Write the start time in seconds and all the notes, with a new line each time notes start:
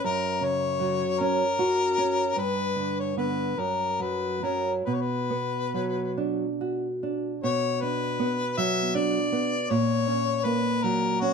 0.04 F#2 A#4
0.41 C#3 C#5
0.80 F#3
1.20 C#4 A#4
1.59 F#4
1.98 C#4
2.36 G2 B4
2.76 D3
2.99 C#5
3.17 D3 B3 B4
3.57 F#2 A#4
3.99 F#3 B4
4.43 F#3 C#4 A#4
4.85 B2 B4
4.94 C#5
5.01 B4
5.30 B3
5.74 F#3
6.17 D4
6.61 F#4
7.03 D4
7.43 B2 C#5
7.81 D4 B4
8.20 B3
8.58 F#3 E5
8.95 D4 D5
9.32 B3
9.70 A#2 C#5
10.07 C#4
10.44 A#3 B4
10.83 F#3 A#4
11.21 C#4 F#4